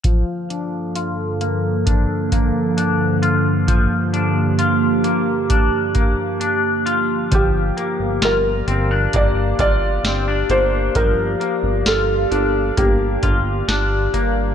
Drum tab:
HH |xxxxxxxx|xxxxxxxx|xxxxxxxx|xxxxxxxx|
SD |--------|--------|--o---o-|--o---o-|
BD |o---oo--|o---oo--|o---oo--|o---oo--|